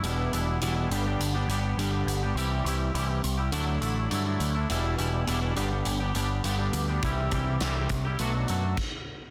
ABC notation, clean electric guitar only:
X:1
M:4/4
L:1/16
Q:1/4=103
K:Em
V:1 name="Clean electric guitar"
[E,,B,,G,B,DE]2 [G,B,DE]2 [E,,B,,G,B,DE] [G,B,DE] [G,,D,G,B,DG] [G,B,DG]2 [G,B,DG] [G,B,DG]2 [G,,D,G,B,DG] [G,B,DG]2 [G,B,DG] | [C,E,G,EG]2 [E,G,EG]2 [C,E,G,EG] [G,EG]2 [G,EG] [D,F,A,DE] [A,DE] [F,A,DE]2 [D,F,A,DE] [A,DE]2 [A,DE] | [E,,B,,E,G,DE]2 [E,G,DE]2 [E,,B,,E,G,DE] [E,G,DE] [G,,D,G,B,DG] [G,B,DG]2 [G,B,DG] [G,B,DG]2 [G,,D,G,B,DG] [G,B,DG]2 [G,B,DG] | [C,E,G,EG]2 [E,G,EG]2 [C,E,G,EG] [G,EG]2 [G,EG] [B,,F,A,DF] [A,DF] [F,A,DF]2 z4 |]